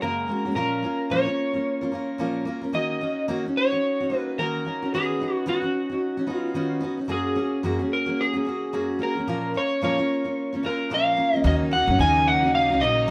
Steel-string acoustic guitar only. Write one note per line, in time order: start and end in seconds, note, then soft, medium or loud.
0.01 0.29 F#2 medium
0.01 0.29 C#3 medium
0.01 0.27 G#3 medium
0.01 0.28 A#3 medium
0.01 0.29 C#4 medium
0.01 0.30 F#4 medium
0.28 0.45 G#3 soft
0.28 0.46 A#3 soft
0.28 0.45 C#4 medium
0.28 0.44 F#4 medium
0.45 0.56 G#3 soft
0.45 0.55 A#3 soft
0.45 0.55 C#4 soft
0.45 0.56 F#4 soft
0.55 0.83 A#2 medium
0.55 0.84 F3 medium
0.55 0.81 A#3 medium
0.55 0.83 C#4 medium
0.55 0.84 F4 medium
0.55 0.84 A#4 medium
0.83 1.10 A#3 soft
0.83 1.10 C#4 medium
0.83 1.11 F4 medium
0.83 1.11 A#4 soft
1.10 1.27 A#2 medium
1.10 1.28 F3 medium
1.10 1.27 A#3 medium
1.10 1.26 C#4 medium
1.10 1.25 F4 medium
1.10 1.24 A#4 medium
1.25 1.55 A#3 soft
1.25 1.54 C#4 soft
1.25 1.53 F4 soft
1.25 1.52 A#4 soft
1.53 1.83 A#3 soft
1.53 1.82 C#4 soft
1.53 1.81 F4 soft
1.53 1.80 A#4 soft
1.81 1.91 A#3 soft
1.81 1.92 C#4 medium
1.81 1.93 F4 soft
1.81 1.92 A#4 medium
1.92 2.18 A#3 medium
1.92 2.18 C#4 soft
1.92 2.19 F4 medium
1.92 2.20 A#4 medium
2.18 2.46 A#2 medium
2.18 2.47 F3 medium
2.18 2.44 A#3 medium
2.18 2.46 C#4 medium
2.18 2.46 F4 medium
2.18 2.47 A#4 medium
2.45 2.63 A#3 medium
2.45 2.63 C#4 medium
2.45 2.62 F4 medium
2.45 2.60 A#4 medium
2.61 2.72 A#3 soft
2.61 2.73 C#4 soft
2.61 2.74 F4 soft
2.61 2.73 A#4 soft
2.73 3.01 D#3 medium
2.73 2.99 A#3 medium
2.73 3.02 C#4 medium
2.73 3.00 D#4 medium
2.73 3.02 F#4 medium
3.00 3.27 A#3 soft
3.00 3.28 C#4 medium
3.00 3.28 D#4 medium
3.00 3.29 F#4 medium
3.28 3.45 D#3 medium
3.28 3.45 A#3 medium
3.28 3.46 C#4 medium
3.28 3.45 D#4 medium
3.28 3.45 F#4 medium
3.46 3.73 C#4 soft
3.46 3.74 D#4 soft
3.46 3.71 F#4 soft
3.72 4.01 C#4 soft
3.72 4.01 D#4 soft
3.72 3.99 F#4 soft
4.00 4.11 C#4 soft
4.00 4.10 D#4 soft
4.00 4.11 F#4 medium
4.10 4.37 A#3 medium
4.10 4.39 C#4 soft
4.10 4.38 D#4 soft
4.10 4.39 F#4 soft
4.38 4.65 D#3 medium
4.38 4.64 A#3 medium
4.38 4.66 C#4 medium
4.38 4.65 D#4 medium
4.38 4.66 F#4 medium
4.65 4.81 A#3 soft
4.65 4.83 C#4 medium
4.65 4.82 D#4 medium
4.65 4.81 F#4 soft
4.82 4.94 C#4 soft
4.82 4.94 D#4 soft
4.82 4.93 F#4 soft
4.94 5.20 D#3 medium
4.94 5.19 B3 medium
4.94 5.21 C#4 medium
4.94 5.20 D#4 medium
4.94 5.21 F#4 medium
5.20 5.45 B3 soft
5.20 5.47 C#4 soft
5.20 5.46 D#4 soft
5.20 5.47 F#4 soft
5.46 5.63 D#3 medium
5.46 5.63 B3 medium
5.46 5.63 C#4 medium
5.46 5.63 D#4 medium
5.46 5.61 F#4 medium
5.62 5.90 C#4 soft
5.62 5.91 D#4 soft
5.62 5.88 F#4 soft
5.90 6.18 C#4 soft
5.90 6.19 D#4 soft
5.90 6.16 F#4 soft
6.17 6.28 C#4 soft
6.17 6.26 D#4 soft
6.17 6.28 F#4 medium
6.27 6.54 B3 medium
6.27 6.55 C#4 medium
6.27 6.54 D#4 medium
6.27 6.55 F#4 medium
6.54 6.82 D#3 medium
6.54 6.79 B3 medium
6.54 6.82 C#4 medium
6.54 6.81 D#4 medium
6.54 6.83 F#4 medium
6.80 6.98 B3 medium
6.80 6.98 C#4 medium
6.80 6.99 D#4 medium
6.80 6.96 F#4 medium
6.97 7.08 C#4 soft
6.97 7.09 D#4 soft
6.97 7.09 F#4 soft
7.08 7.36 F#2 medium
7.08 7.36 F#3 medium
7.08 7.34 A#3 medium
7.08 7.35 C#4 medium
7.08 7.37 F#4 medium
7.08 7.37 G#4 medium
7.35 7.63 A#3 medium
7.35 7.63 C#4 medium
7.35 7.64 F#4 medium
7.35 7.64 G#4 medium
7.63 7.80 F#2 medium
7.63 7.80 F#3 medium
7.63 7.81 A#3 medium
7.63 7.80 C#4 medium
7.63 7.78 F#4 medium
7.63 7.79 G#4 medium
7.79 8.08 A#3 soft
7.79 8.07 C#4 soft
7.79 8.05 F#4 medium
7.79 8.06 G#4 soft
8.06 8.35 A#3 soft
8.06 8.34 C#4 soft
8.06 8.32 F#4 medium
8.06 8.33 G#4 soft
8.33 8.44 A#3 soft
8.33 8.45 C#4 soft
8.33 8.45 F#4 soft
8.33 8.45 G#4 soft
8.45 8.72 A#3 soft
8.45 8.73 C#4 soft
8.45 8.73 F#4 medium
8.45 8.73 G#4 soft
8.73 9.00 F#2 medium
8.73 9.00 F#3 medium
8.73 8.98 A#3 medium
8.73 8.99 C#4 medium
8.73 9.01 F#4 medium
8.73 9.00 G#4 medium
8.99 9.16 A#3 soft
8.99 9.17 C#4 medium
8.99 9.14 F#4 medium
8.99 9.16 G#4 medium
9.15 9.27 C#4 soft
9.15 9.27 F#4 soft
9.15 9.28 G#4 soft
9.19 9.27 A#3 soft
9.28 9.55 A#2 medium
9.28 9.55 F3 medium
9.28 9.53 A#3 medium
9.28 9.54 C#4 medium
9.28 9.55 F4 medium
9.28 9.56 A#4 medium
9.54 9.81 A#3 medium
9.54 9.82 C#4 medium
9.54 9.82 F4 soft
9.54 9.83 A#4 medium
9.82 9.98 A#2 medium
9.82 9.98 F3 medium
9.82 9.98 A#3 medium
9.82 9.99 C#4 medium
9.82 9.98 F4 medium
9.82 9.96 A#4 medium
9.98 10.27 A#3 soft
9.98 10.25 C#4 soft
9.98 10.24 F4 soft
9.98 10.23 A#4 soft
10.24 10.54 A#3 soft
10.24 10.53 C#4 soft
10.24 10.52 F4 soft
10.24 10.51 A#4 soft
10.53 10.62 A#3 soft
10.53 10.63 C#4 soft
10.53 10.64 F4 medium
10.53 10.63 A#4 soft
10.63 10.90 A#3 medium
10.63 10.91 C#4 medium
10.63 10.91 F4 medium
10.63 10.91 A#4 medium
10.90 11.17 A#2 medium
10.90 11.18 F3 medium
10.90 11.15 A#3 medium
10.90 11.16 C#4 medium
10.90 11.18 F4 medium
10.90 11.19 A#4 medium
11.17 11.33 A#3 medium
11.17 11.34 C#4 medium
11.17 11.33 F4 medium
11.17 11.32 A#4 medium
11.33 11.43 A#3 soft
11.33 11.44 C#4 soft
11.33 11.45 F4 soft
11.33 11.44 A#4 medium
11.44 11.71 D#3 medium
11.44 11.70 A#3 medium
11.44 11.72 C#4 medium
11.44 11.71 D#4 medium
11.44 11.73 F#4 medium
11.71 11.88 A#3 medium
11.71 11.89 C#4 medium
11.71 11.88 D#4 medium
11.71 11.87 F#4 medium
11.88 12.00 C#4 medium
11.88 12.00 D#4 soft
11.88 11.99 F#4 medium
12.00 12.43 D#3 medium
12.00 12.43 A#3 medium
12.00 12.43 C#4 medium
12.00 12.43 D#4 medium
12.00 12.41 F#4 medium
12.43 12.71 C#4 soft
12.43 12.71 D#4 soft
12.43 12.69 F#4 soft
12.70 12.82 C#4 medium
12.70 12.81 D#4 soft
12.70 12.81 F#4 medium
12.81 13.07 A#3 medium
12.81 13.08 C#4 medium
12.81 13.08 D#4 medium
12.81 13.09 F#4 medium